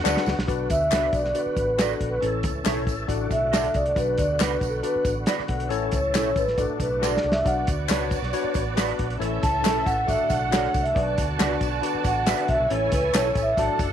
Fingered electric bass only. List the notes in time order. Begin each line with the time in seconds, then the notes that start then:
0.05 D2
0.27 C#2
0.38 B1
0.49 B1
0.71 D2
0.92 C#2
1.13 B1
1.46 muted fingered electric bass stroke
1.57 A1
2.01 A#1
2.23 A1
2.44 C#2
2.66 B1
2.87 A1
3.09 A1
3.31 B1
3.75 C2
3.97 B1
4.19 D2
4.40 C#2
4.62 B1
4.96 muted fingered electric bass stroke
5.05 A1
5.39 muted fingered electric bass stroke
5.49 B1
5.71 A1
5.93 C#2
6.15 B1
6.36 A1
6.58 A1
6.70 muted fingered electric bass stroke
6.80 B1
7.24 C2
7.46 B1
7.68 D2
7.89 C#2
8.22 B1
8.44 muted fingered electric bass stroke
8.55 A1
9.00 A#1
9.20 A1
9.44 C#2
9.65 B1
9.87 A1
10.09 A1
10.31 B1
10.75 C2
10.96 B1
11.19 D2
11.40 C#2
11.61 B1
11.95 muted fingered electric bass stroke
12.05 A1
12.49 B1
12.60 B1
12.71 A1
12.93 C#2
13.14 B1
13.35 A1
13.58 A1
13.69 muted fingered electric bass stroke
13.80 F#1